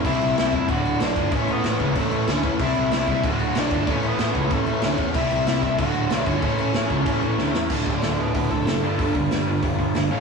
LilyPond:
<<
  \new Staff \with { instrumentName = "Lead electric guitar" } { \time 4/4 \key d \major \tempo 4 = 188 <e' e''>4 <e' e''>8 <e' e''>8 <fis' fis''>4 <d' d''>4 | <cis' cis''>8 <b b'>4. <a a'>4 <cis' cis''>8. r16 | <e' e''>4 <e' e''>8 <e' e''>8 <fis' fis''>4 <d' d''>4 | <cis' cis''>8 <b b'>4. <a a'>4 <cis' cis''>8. r16 |
<e' e''>4 <e' e''>8 <e' e''>8 <fis' fis''>4. <cis' cis''>8~ | <cis' cis''>2. r4 | r8 <a' d''>8 <a' d''>8 <fis' b'>8 <fis' b'>8 a'4.~ | a'8 r2. f''8 | }
  \new Staff \with { instrumentName = "Overdriven electric guitar" } { \time 4/4 \key d \major <c g c' e' g' c''>2 <d, a, d a fis'>2 | <a, e a cis' e' a'>1 | <c g c' e' g' c''>2 <d, a, d a fis'>2 | <a, e a cis' e' a'>1 |
<c g c' e' g' c''>2 <d, a, d a fis'>2 | <a, e a cis' e' a'>1 | <d, a, d a fis'>2.~ <d, a, d a fis'>8 <g, d g b d' g'>8~ | <g, d g b d' g'>2.~ <g, d g b d' g'>8 <a, e a cis' e' a'>8 | }
  \new Staff \with { instrumentName = "Overdriven electric guitar" } { \clef bass \time 4/4 \key d \major <c g c'>4. <c g c'>8 <d, a, d>4. <d, a, d>8 | <a, e a>4. <a, e a>4. <a, e a>4 | <c g c'>4. <c g c'>8 <d, a, d>4. <d, a, d>8 | <a, e a>4. <a, e a>4. <a, e a>4 |
<c g c'>4. <c g c'>8 <d, a, d>4. <d, a, d>8 | <a, e a>4. <a, e a>4. <a, e a>4 | <d, a, d>8 <d, a,>8 <d, a,>8 <d, a,>8 <d, a,>8 <d, a,>8 <d, a,>8 <g, d g>8 | <g, d g>8 <g, d>8 <g, d>8 <g, d>8 <g, d>8 <g, d>8 <g, d>8 <a, e a>8 | }
  \new Staff \with { instrumentName = "Picked electric bass" } { \clef bass \time 4/4 \key d \major c,8 c,8 c,8 e,8 d,,4 b,,8 g,,8 | a,,4 a,,8 cis,8 a,,8 a,,8 d,8 e,8 | c,8 c,8 c,8 c,8 d,,4 b,,8 g,,8 | a,,4 a,,8 cis,8 a,,8 a,,8 d,8 e,8 |
c,8 c,8 c,8 c,8 d,,4 b,,8 g,,8 | a,,4 a,,8 cis,8 a,,8 a,,8 d,8 e,8 | d,,8 d,,8 d,,8 d,,8 d,,8 d,,8 fis,,8 g,,8 | g,,8 g,,8 g,,8 g,,8 g,,8 g,,8 g,,8 a,,8 | }
  \new DrumStaff \with { instrumentName = "Drums" } \drummode { \time 4/4 <cymc bd>8 cymc8 <cymc sn>8 <cymc bd>8 <cymc bd>8 cymc8 <cymc sn>8 <cymc bd>8 | <cymc bd>8 cymc8 <cymc sn>8 <cymc bd>8 <cymc bd>8 cymc8 <cymc sn>8 <cymc bd>8 | <cymc bd>8 cymc8 <cymc sn>8 <cymc bd>8 <cymc bd>8 cymc8 <cymc sn>8 <cymc bd>8 | <cymc bd>8 cymc8 <cymc sn>8 <cymc bd>8 <cymc bd>8 cymc8 <cymc sn>8 <cymc bd>8 |
<cymc bd>8 cymc8 <cymc sn>8 <cymc bd>8 <cymc bd>8 cymc8 <cymc sn>8 <cymc bd>8 | <cymc bd>8 cymc8 <cymc sn>8 <cymc bd>8 <cymc bd>8 cymc8 sn8 sn8 | <cymc bd>8 bd8 <hho sn>4 <hho bd>8 bd8 <hho sn>4 | <hho bd>8 bd8 <hho sn>4 <hho bd>8 bd8 <hho sn>4 | }
>>